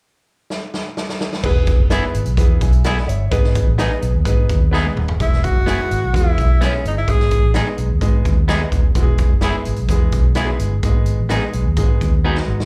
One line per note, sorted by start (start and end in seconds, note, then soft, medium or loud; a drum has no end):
0.50 snare medium
0.74 snare medium
0.97 snare medium
1.09 snare medium
1.21 snare loud
1.33 snare medium
1.43 1.73 E1 medium
1.43 1.77 B3 medium
1.43 1.77 E4 medium
1.43 1.77 G#4 medium
1.43 1.78 B4 loud
1.43 kick loud
1.43 crash medium
1.67 kick medium
1.67 closed hi-hat medium
1.80 1.99 F#1 medium
1.90 2.24 B3 medium
1.90 2.03 B3 medium
1.90 2.24 E4 medium
1.90 2.03 E4 medium
1.90 2.24 G#4 medium
1.90 2.04 G#4 medium
1.90 2.24 B4 medium
1.90 snare loud
1.90 closed hi-hat medium
2.14 2.24 G#1 medium
2.14 closed hi-hat medium
2.26 2.36 B1 medium
2.26 closed hi-hat soft
2.37 2.57 E2 loud
2.37 2.71 B3 medium
2.37 2.71 E4 medium
2.37 2.72 G#4 medium
2.37 2.72 B4 medium
2.37 kick medium
2.37 closed hi-hat medium
2.61 3.00 B1 medium
2.61 2.84 E5 medium
2.61 2.84 G#5 medium
2.61 kick medium
2.61 closed hi-hat medium
2.73 closed hi-hat soft
2.84 2.97 B3 medium
2.84 2.97 E4 medium
2.84 2.98 G#4 medium
2.84 3.08 D#5 medium
2.84 3.07 F#5 medium
2.84 snare medium
2.84 closed hi-hat medium
2.97 snare soft
3.08 3.27 G1 medium
3.08 3.53 C#5 medium
3.08 3.53 E5 medium
3.08 closed hi-hat medium
3.31 3.61 G#1 loud
3.31 3.65 B3 loud
3.31 3.65 D#4 medium
3.31 3.65 G#4 medium
3.31 3.65 B4 loud
3.31 kick loud
3.31 closed hi-hat medium
3.44 snare soft
3.55 kick medium
3.55 closed hi-hat medium
3.68 3.87 A1 medium
3.78 3.91 B3 medium
3.78 4.12 B3 medium
3.78 4.12 D#4 medium
3.78 3.91 D#4 medium
3.78 4.12 G#4 medium
3.78 3.91 G#4 medium
3.78 4.12 B4 medium
3.78 snare medium
3.78 closed hi-hat medium
4.02 4.12 B1 medium
4.02 closed hi-hat medium
4.15 4.24 D#2 medium
4.25 4.45 G#2 loud
4.25 4.59 B3 medium
4.25 4.59 D#4 medium
4.25 4.59 G#4 medium
4.25 4.59 B4 medium
4.25 kick medium
4.25 closed hi-hat medium
4.49 4.88 D#2 medium
4.49 kick medium
4.49 closed hi-hat medium
4.71 5.05 B3 medium
4.71 4.85 B3 medium
4.71 5.05 D#4 medium
4.71 4.85 D#4 medium
4.71 5.06 G#4 medium
4.71 4.86 G#4 loud
4.71 4.78 A4 medium
4.71 5.16 B5 medium
4.71 snare soft
4.78 5.09 B4 medium
4.85 high tom medium
4.96 5.15 D#1 medium
4.96 mid tom medium
5.08 floor tom medium
5.20 5.49 E1 medium
5.20 5.53 G#3 medium
5.20 5.53 B3 medium
5.20 5.53 E4 medium
5.20 5.46 E4 medium
5.20 5.53 G#4 medium
5.20 kick loud
5.20 closed hi-hat medium
5.33 snare soft
5.44 6.17 F#4 loud
5.44 kick medium
5.44 closed hi-hat medium
5.56 5.75 F#1 medium
5.66 6.00 G#3 medium
5.66 5.79 B3 medium
5.66 6.00 B3 medium
5.66 6.00 E4 medium
5.66 5.79 E4 medium
5.66 6.00 G#4 medium
5.66 5.80 G#4 medium
5.66 snare medium
5.66 closed hi-hat medium
5.91 6.00 G#1 medium
5.91 closed hi-hat medium
6.02 6.12 B1 medium
6.13 6.33 E2 medium
6.13 6.47 G#3 medium
6.13 6.47 B3 medium
6.13 6.47 E4 medium
6.13 6.61 E4 medium
6.13 6.19 F#4 medium
6.13 kick medium
6.13 closed hi-hat medium
6.20 6.50 G#4 medium
6.38 6.77 B1 medium
6.38 kick medium
6.38 closed hi-hat medium
6.61 6.94 G#3 medium
6.61 6.94 B3 medium
6.61 6.73 B3 medium
6.61 6.84 C#4 medium
6.61 6.94 E4 medium
6.61 6.73 E4 medium
6.61 6.67 G4 medium
6.61 6.74 G#4 medium
6.61 snare medium
6.61 closed hi-hat medium
6.67 6.97 G#4 medium
6.85 7.04 G1 medium
6.85 6.97 D#4 medium
6.85 closed hi-hat medium
6.98 7.12 E4 medium
7.07 7.37 G#1 medium
7.07 7.41 G#3 medium
7.07 7.41 B3 medium
7.07 7.41 D#4 medium
7.07 7.41 G#4 medium
7.07 7.56 G#4 loud
7.07 kick medium
7.07 closed hi-hat medium
7.20 snare soft
7.31 kick medium
7.31 closed hi-hat medium
7.43 7.62 A1 medium
7.54 7.88 G#3 medium
7.54 7.67 B3 medium
7.54 7.88 B3 medium
7.54 7.88 D#4 medium
7.54 7.67 D#4 medium
7.54 7.60 G4 medium
7.54 7.67 G#4 medium
7.54 snare loud
7.54 closed hi-hat medium
7.61 7.91 G#4 medium
7.78 7.88 B1 medium
7.78 closed hi-hat medium
7.90 8.00 D#2 medium
8.01 8.21 G#2 loud
8.01 8.35 G#3 medium
8.01 8.35 B3 medium
8.01 8.35 D#4 medium
8.01 8.35 G#4 medium
8.01 kick medium
8.01 closed hi-hat medium
8.25 8.64 D#2 medium
8.25 kick medium
8.25 closed hi-hat medium
8.48 8.82 G#3 medium
8.48 8.60 B3 medium
8.48 8.82 B3 medium
8.48 8.61 D#4 medium
8.48 8.82 D#4 medium
8.48 8.55 G4 medium
8.48 8.61 G#4 medium
8.48 snare medium
8.48 closed hi-hat medium
8.55 8.85 G#4 medium
8.72 8.92 D#1 medium
8.72 kick medium
8.72 closed hi-hat medium
8.95 9.24 E1 medium
8.95 9.29 G#3 medium
8.95 9.29 B3 medium
8.95 9.29 E4 medium
8.95 9.02 F#4 medium
8.95 kick medium
8.95 closed hi-hat medium
9.03 9.32 G#4 medium
9.18 kick medium
9.18 closed hi-hat medium
9.32 9.51 F#1 medium
9.41 9.76 G#3 medium
9.41 9.55 B3 medium
9.41 9.76 B3 medium
9.41 9.55 E4 medium
9.41 9.77 E4 medium
9.41 9.77 G#4 medium
9.41 9.56 G#4 medium
9.41 snare medium
9.41 closed hi-hat medium
9.65 9.76 G#1 medium
9.65 closed hi-hat medium
9.76 9.88 B1 medium
9.76 closed hi-hat soft
9.89 10.08 E2 loud
9.89 10.23 G#3 medium
9.89 10.23 B3 medium
9.89 10.23 E4 medium
9.89 10.24 G#4 medium
9.89 kick medium
9.89 closed hi-hat medium
10.12 10.52 B1 medium
10.12 kick medium
10.12 closed hi-hat medium
10.35 10.71 G#3 medium
10.35 10.48 B3 medium
10.35 10.70 B3 medium
10.35 10.49 E4 medium
10.35 10.71 E4 medium
10.35 10.43 F#4 medium
10.35 10.49 G#4 medium
10.35 snare medium
10.35 closed hi-hat medium
10.44 10.74 G#4 medium
10.59 10.79 G1 medium
10.59 closed hi-hat medium
10.83 11.12 G#1 loud
10.83 11.17 G#3 medium
10.83 10.89 A#3 medium
10.83 11.17 D#4 medium
10.83 11.18 G#4 medium
10.83 kick loud
10.83 closed hi-hat medium
10.89 11.20 B3 medium
11.06 closed hi-hat medium
11.19 11.38 A1 medium
11.29 11.64 G#3 medium
11.29 11.42 B3 medium
11.29 11.64 B3 medium
11.29 11.43 D#4 medium
11.29 11.65 D#4 medium
11.29 11.37 G4 medium
11.29 11.43 G#4 medium
11.29 snare medium
11.29 closed hi-hat medium
11.37 11.67 G#4 medium
11.53 11.64 B1 medium
11.53 closed hi-hat medium
11.65 11.75 D#2 medium
11.77 11.97 G#2 medium
11.77 12.11 G#3 medium
11.77 11.83 A#3 medium
11.77 12.11 D#4 medium
11.77 12.11 G#4 medium
11.77 kick medium
11.77 closed hi-hat medium
11.83 12.14 B3 medium
12.01 12.40 D#2 medium
12.01 kick medium
12.01 closed hi-hat medium
12.24 12.58 G#3 medium
12.24 12.37 B3 medium
12.24 12.58 B3 medium
12.24 12.58 D#4 medium
12.24 12.37 D#4 medium
12.24 12.58 F#4 medium
12.24 12.37 G#4 medium
12.37 snare soft
12.48 12.65 G#1 medium
12.60 snare medium